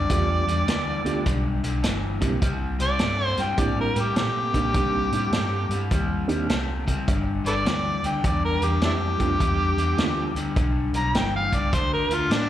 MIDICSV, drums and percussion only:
0, 0, Header, 1, 2, 480
1, 0, Start_track
1, 0, Tempo, 581959
1, 73, Time_signature, 4, 2, 24, 8
1, 10304, End_track
2, 0, Start_track
2, 0, Title_t, "Drums"
2, 79, Note_on_c, 9, 42, 80
2, 82, Note_on_c, 9, 36, 104
2, 162, Note_off_c, 9, 42, 0
2, 165, Note_off_c, 9, 36, 0
2, 399, Note_on_c, 9, 42, 56
2, 482, Note_off_c, 9, 42, 0
2, 560, Note_on_c, 9, 42, 82
2, 564, Note_on_c, 9, 38, 99
2, 643, Note_off_c, 9, 42, 0
2, 647, Note_off_c, 9, 38, 0
2, 874, Note_on_c, 9, 42, 58
2, 956, Note_off_c, 9, 42, 0
2, 1039, Note_on_c, 9, 42, 78
2, 1040, Note_on_c, 9, 36, 97
2, 1121, Note_off_c, 9, 42, 0
2, 1122, Note_off_c, 9, 36, 0
2, 1351, Note_on_c, 9, 42, 61
2, 1433, Note_off_c, 9, 42, 0
2, 1514, Note_on_c, 9, 42, 85
2, 1518, Note_on_c, 9, 38, 100
2, 1596, Note_off_c, 9, 42, 0
2, 1600, Note_off_c, 9, 38, 0
2, 1827, Note_on_c, 9, 42, 64
2, 1829, Note_on_c, 9, 36, 76
2, 1909, Note_off_c, 9, 42, 0
2, 1911, Note_off_c, 9, 36, 0
2, 1996, Note_on_c, 9, 36, 108
2, 1997, Note_on_c, 9, 42, 84
2, 2078, Note_off_c, 9, 36, 0
2, 2079, Note_off_c, 9, 42, 0
2, 2307, Note_on_c, 9, 42, 63
2, 2389, Note_off_c, 9, 42, 0
2, 2466, Note_on_c, 9, 42, 80
2, 2470, Note_on_c, 9, 38, 106
2, 2548, Note_off_c, 9, 42, 0
2, 2553, Note_off_c, 9, 38, 0
2, 2783, Note_on_c, 9, 42, 61
2, 2787, Note_on_c, 9, 38, 31
2, 2865, Note_off_c, 9, 42, 0
2, 2869, Note_off_c, 9, 38, 0
2, 2949, Note_on_c, 9, 42, 77
2, 2952, Note_on_c, 9, 36, 99
2, 3031, Note_off_c, 9, 42, 0
2, 3035, Note_off_c, 9, 36, 0
2, 3265, Note_on_c, 9, 42, 58
2, 3348, Note_off_c, 9, 42, 0
2, 3431, Note_on_c, 9, 42, 78
2, 3435, Note_on_c, 9, 38, 102
2, 3514, Note_off_c, 9, 42, 0
2, 3518, Note_off_c, 9, 38, 0
2, 3746, Note_on_c, 9, 36, 75
2, 3747, Note_on_c, 9, 42, 59
2, 3829, Note_off_c, 9, 36, 0
2, 3829, Note_off_c, 9, 42, 0
2, 3911, Note_on_c, 9, 42, 72
2, 3914, Note_on_c, 9, 36, 111
2, 3994, Note_off_c, 9, 42, 0
2, 3996, Note_off_c, 9, 36, 0
2, 4226, Note_on_c, 9, 42, 58
2, 4309, Note_off_c, 9, 42, 0
2, 4392, Note_on_c, 9, 42, 72
2, 4396, Note_on_c, 9, 38, 106
2, 4474, Note_off_c, 9, 42, 0
2, 4478, Note_off_c, 9, 38, 0
2, 4706, Note_on_c, 9, 42, 61
2, 4789, Note_off_c, 9, 42, 0
2, 4873, Note_on_c, 9, 42, 80
2, 4876, Note_on_c, 9, 36, 101
2, 4956, Note_off_c, 9, 42, 0
2, 4959, Note_off_c, 9, 36, 0
2, 5188, Note_on_c, 9, 42, 60
2, 5270, Note_off_c, 9, 42, 0
2, 5357, Note_on_c, 9, 42, 87
2, 5361, Note_on_c, 9, 38, 108
2, 5440, Note_off_c, 9, 42, 0
2, 5444, Note_off_c, 9, 38, 0
2, 5672, Note_on_c, 9, 36, 74
2, 5673, Note_on_c, 9, 42, 63
2, 5754, Note_off_c, 9, 36, 0
2, 5756, Note_off_c, 9, 42, 0
2, 5839, Note_on_c, 9, 36, 110
2, 5839, Note_on_c, 9, 42, 86
2, 5922, Note_off_c, 9, 36, 0
2, 5922, Note_off_c, 9, 42, 0
2, 6152, Note_on_c, 9, 42, 64
2, 6235, Note_off_c, 9, 42, 0
2, 6319, Note_on_c, 9, 42, 83
2, 6323, Note_on_c, 9, 38, 106
2, 6402, Note_off_c, 9, 42, 0
2, 6406, Note_off_c, 9, 38, 0
2, 6631, Note_on_c, 9, 42, 60
2, 6713, Note_off_c, 9, 42, 0
2, 6796, Note_on_c, 9, 42, 82
2, 6797, Note_on_c, 9, 36, 108
2, 6878, Note_off_c, 9, 42, 0
2, 6880, Note_off_c, 9, 36, 0
2, 7108, Note_on_c, 9, 42, 60
2, 7191, Note_off_c, 9, 42, 0
2, 7271, Note_on_c, 9, 42, 82
2, 7275, Note_on_c, 9, 38, 105
2, 7354, Note_off_c, 9, 42, 0
2, 7358, Note_off_c, 9, 38, 0
2, 7586, Note_on_c, 9, 42, 58
2, 7588, Note_on_c, 9, 36, 77
2, 7668, Note_off_c, 9, 42, 0
2, 7670, Note_off_c, 9, 36, 0
2, 7756, Note_on_c, 9, 36, 105
2, 7757, Note_on_c, 9, 42, 80
2, 7839, Note_off_c, 9, 36, 0
2, 7840, Note_off_c, 9, 42, 0
2, 8068, Note_on_c, 9, 42, 60
2, 8150, Note_off_c, 9, 42, 0
2, 8233, Note_on_c, 9, 42, 76
2, 8237, Note_on_c, 9, 38, 106
2, 8315, Note_off_c, 9, 42, 0
2, 8319, Note_off_c, 9, 38, 0
2, 8545, Note_on_c, 9, 42, 59
2, 8628, Note_off_c, 9, 42, 0
2, 8711, Note_on_c, 9, 42, 72
2, 8713, Note_on_c, 9, 36, 107
2, 8793, Note_off_c, 9, 42, 0
2, 8796, Note_off_c, 9, 36, 0
2, 9022, Note_on_c, 9, 42, 60
2, 9105, Note_off_c, 9, 42, 0
2, 9193, Note_on_c, 9, 42, 78
2, 9197, Note_on_c, 9, 38, 110
2, 9275, Note_off_c, 9, 42, 0
2, 9279, Note_off_c, 9, 38, 0
2, 9506, Note_on_c, 9, 36, 75
2, 9507, Note_on_c, 9, 42, 60
2, 9589, Note_off_c, 9, 36, 0
2, 9589, Note_off_c, 9, 42, 0
2, 9673, Note_on_c, 9, 42, 83
2, 9674, Note_on_c, 9, 36, 105
2, 9756, Note_off_c, 9, 42, 0
2, 9757, Note_off_c, 9, 36, 0
2, 9985, Note_on_c, 9, 42, 63
2, 10068, Note_off_c, 9, 42, 0
2, 10152, Note_on_c, 9, 42, 84
2, 10156, Note_on_c, 9, 38, 113
2, 10235, Note_off_c, 9, 42, 0
2, 10239, Note_off_c, 9, 38, 0
2, 10304, End_track
0, 0, End_of_file